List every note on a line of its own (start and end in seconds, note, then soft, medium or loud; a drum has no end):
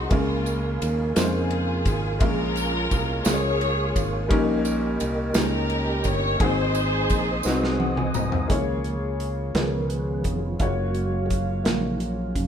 0.00 0.13 G#2 medium
0.00 0.09 G#3 medium
0.00 0.13 C4 medium
0.00 0.13 D#4 medium
0.00 0.12 F#4 medium
0.00 0.14 F#4 medium
0.00 0.13 C5 medium
0.00 0.10 C6 medium
0.09 0.77 C#2 loud
0.09 1.12 C#3 medium
0.09 1.09 G#3 medium
0.09 1.10 A#3 medium
0.09 1.10 C#4 medium
0.09 1.11 F4 medium
0.09 6.37 A#4 medium
0.09 1.11 A#4 medium
0.09 4.27 F5 medium
0.09 2.20 G#5 medium
0.09 kick loud
0.09 ride medium
0.14 1.14 G#3 medium
0.14 1.14 A#3 medium
0.14 0.79 F4 medium
0.46 ride soft
0.46 tambourine medium
0.82 1.14 D#2 medium
0.82 ride medium
0.82 tambourine medium
1.15 1.82 F2 loud
1.15 2.15 G#3 medium
1.15 2.15 A#3 medium
1.15 2.15 C#4 medium
1.15 1.23 D#4 soft
1.15 2.16 C5 medium
1.15 snare loud
1.15 ride medium
1.15 tambourine medium
1.19 2.19 F4 medium
1.19 2.19 G#4 medium
1.24 2.19 F4 medium
1.51 ride soft
1.85 2.18 G#1 loud
1.85 kick medium
1.85 ride medium
1.85 tambourine soft
2.19 2.87 A#1 loud
2.19 3.22 A#2 medium
2.19 3.19 G#3 medium
2.19 3.20 A#3 medium
2.19 3.20 C#4 medium
2.19 3.20 F4 medium
2.19 3.21 A#4 medium
2.19 3.27 A#4 loud
2.19 4.29 G#5 medium
2.19 kick loud
2.19 ride medium
2.23 3.23 C#4 medium
2.23 3.23 F4 medium
2.56 ride soft
2.56 tambourine medium
2.91 3.23 C2 medium
2.91 kick medium
2.91 ride medium
2.91 tambourine medium
3.24 3.92 C#2 loud
3.24 4.24 G#3 medium
3.24 4.25 A#3 medium
3.24 4.25 C#4 medium
3.24 4.25 F4 medium
3.24 3.33 C5 medium
3.24 snare loud
3.24 ride medium
3.24 tambourine medium
3.29 4.28 F4 medium
3.29 4.28 G#4 medium
3.29 4.06 C#5 loud
3.34 4.29 C#5 medium
3.61 ride medium
3.96 4.28 G#1 medium
3.96 kick medium
3.96 ride medium
3.96 tambourine medium
4.29 4.97 A#1 loud
4.29 5.31 A#2 medium
4.29 5.29 G3 loud
4.29 5.29 A#3 loud
4.29 5.30 C#4 medium
4.29 5.30 D#4 medium
4.29 5.31 A#4 loud
4.29 8.47 D#5 medium
4.29 6.39 G5 medium
4.29 kick loud
4.29 ride medium
4.65 ride soft
4.65 tambourine medium
5.00 5.33 C2 medium
5.00 ride medium
5.00 tambourine medium
5.33 6.02 C#2 medium
5.33 6.34 G3 medium
5.33 6.34 A#3 medium
5.33 6.35 C#4 medium
5.33 6.35 D#4 medium
5.33 6.35 A#4 medium
5.33 snare loud
5.33 ride medium
5.33 tambourine medium
5.37 6.38 C#4 medium
5.37 6.38 G4 medium
5.37 6.02 A#4 loud
5.70 ride medium
6.04 6.38 G1 medium
6.04 6.41 C#5 loud
6.04 kick medium
6.04 ride medium
6.04 tambourine medium
6.38 7.06 G#1 loud
6.38 7.41 G#2 medium
6.38 6.46 A#3 medium
6.38 7.39 D#4 medium
6.38 7.40 G#4 loud
6.38 8.48 C5 medium
6.38 8.48 G#5 medium
6.38 8.48 D#6 medium
6.38 kick loud
6.38 ride medium
6.42 7.42 C4 medium
6.42 7.77 D#4 medium
6.42 7.78 G#4 medium
6.42 7.81 C5 loud
6.75 ride soft
6.75 tambourine medium
7.10 7.43 A#1 medium
7.10 kick medium
7.10 ride medium
7.10 tambourine soft
7.43 8.12 C2 loud
7.43 7.51 B3 medium
7.43 8.44 D#4 medium
7.43 8.45 F#4 medium
7.43 snare medium
7.43 tambourine medium
7.50 8.47 C4 medium
7.64 snare medium
7.80 7.96 F#5 medium
7.80 high tom medium
7.96 8.13 G#5 medium
7.96 mid tom medium
8.14 8.48 C2 medium
8.14 8.48 A#5 medium
8.14 mid tom medium
8.14 tambourine medium
8.32 floor tom medium
8.48 9.51 C#2 medium
8.48 9.51 C#3 medium
8.48 8.97 D#3 soft
8.48 8.97 F3 soft
8.48 9.48 A#3 medium
8.48 9.54 A#3 medium
8.48 8.97 A#3 medium
8.48 10.58 C#4 medium
8.48 8.56 E4 medium
8.48 10.58 F4 medium
8.48 9.49 G#4 medium
8.48 9.54 G#4 medium
8.48 9.50 C#5 medium
8.48 kick medium
8.48 closed hi-hat medium
8.55 9.52 F4 medium
8.84 closed hi-hat soft
9.20 closed hi-hat medium
9.54 10.21 C#2 medium
9.54 10.57 C#3 medium
9.54 10.56 D#3 soft
9.54 10.57 F3 soft
9.54 10.60 G#3 medium
9.54 10.54 B3 medium
9.54 10.59 B3 medium
9.54 10.57 B3 soft
9.54 10.55 F4 medium
9.54 10.55 G#4 soft
9.54 9.91 A#4 medium
9.54 10.56 C#5 medium
9.54 snare medium
9.54 closed hi-hat medium
9.88 10.25 B4 medium
9.88 closed hi-hat medium
10.24 10.57 F1 medium
10.24 10.43 G#4 medium
10.24 kick medium
10.24 closed hi-hat medium
10.39 10.90 F4 medium
10.59 11.61 F#1 medium
10.59 12.47 C#3 medium
10.59 12.47 F#3 soft
10.59 11.65 G#3 soft
10.59 11.59 A#3 medium
10.59 12.47 A#3 medium
10.59 11.65 A#3 medium
10.59 12.47 C#4 medium
10.59 11.59 F4 medium
10.59 11.60 F#4 medium
10.59 11.61 C#5 medium
10.59 12.47 F5 medium
10.59 kick loud
10.59 closed hi-hat medium
10.91 11.30 F#4 medium
10.91 closed hi-hat soft
11.26 11.35 G#4 medium
11.30 kick medium
11.30 closed hi-hat medium
11.46 11.63 F4 medium
11.64 12.32 A#1 medium
11.64 11.97 C#3 soft
11.64 11.97 G#3 soft
11.64 12.47 A#3 medium
11.64 11.98 A#3 soft
11.64 12.01 D#4 medium
11.64 12.47 F4 soft
11.64 12.47 F#4 medium
11.64 12.47 A#4 medium
11.64 snare medium
11.64 closed hi-hat medium
11.98 12.35 F4 medium
11.98 closed hi-hat medium
12.35 12.47 F1 medium
12.35 12.47 C#4 medium
12.35 kick medium
12.35 closed hi-hat medium